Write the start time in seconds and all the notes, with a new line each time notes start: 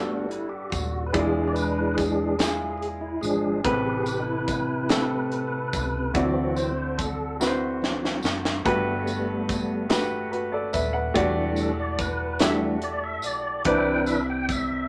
Already playing: G1 G2 G3 A3 B3 D4 F#4 A4 B4
0.29 E4, closed hi-hat
0.49 G4
0.70 D#1 F#4, kick, closed hi-hat, tambourine
1.06 B4
1.12 E1 E3 G3 G#3 D4 E4 F4 G#4 D5, kick, closed hi-hat
1.19 G#3
1.48 D5
1.53 B4, closed hi-hat, tambourine
1.94 G#4, kick, closed hi-hat
1.99 tambourine
2.39 G#3 E4 F4 G#4, snare, closed hi-hat, tambourine
2.78 G#4
2.82 closed hi-hat
3.01 E4
3.21 G#1 F3 G#3 D4 G#4, closed hi-hat, tambourine
3.64 A1 A2 C3 A3 C4 G4 B4, kick, closed hi-hat
4.05 G4, closed hi-hat, tambourine
4.20 D#4
4.25 E4
4.48 kick, closed hi-hat, tambourine
4.89 A3 C4 G4 A4, snare, closed hi-hat, tambourine
5.31 closed hi-hat
5.73 C#2, kick, closed hi-hat, tambourine
6.14 D2 D3 E3 F#3 C4 E4 F#4 D5, kick, closed hi-hat
6.56 C5, closed hi-hat, tambourine
6.98 A4, kick, closed hi-hat, tambourine
7.40 C4 E4 F#4 B4, snare, tambourine
7.47 C5
7.82 E3 F#3 C4, snare
8.05 snare
8.23 F#1, snare, tambourine
8.45 snare
8.65 G1 G2 G3 A3 B3 F#4 G4 B4, kick, closed hi-hat
9.07 closed hi-hat, tambourine
9.49 kick, closed hi-hat, tambourine
9.89 A3 F#4 G4 B4, snare, closed hi-hat, tambourine
10.31 F#4 B4, closed hi-hat
10.52 A4 D5
10.73 D#1 B4 E5, kick, closed hi-hat, tambourine
10.93 B4 F#5
11.14 E1 E3 G3 A3 D4 F#4 G4 D5, kick, closed hi-hat
11.56 A4, closed hi-hat, tambourine
11.80 D5
11.99 B4, kick, closed hi-hat, tambourine
12.39 E3 G3 A3 D4 F#4 G4 E5, snare, closed hi-hat, tambourine
12.82 D5, closed hi-hat
13.04 E5
13.22 B1 D5, closed hi-hat, tambourine
13.64 C2 C3 E3 C4 D4 B4 D5 G5, kick, closed hi-hat
13.72 E4
14.06 E5, closed hi-hat, tambourine
14.30 G5
14.49 E5, kick, closed hi-hat, tambourine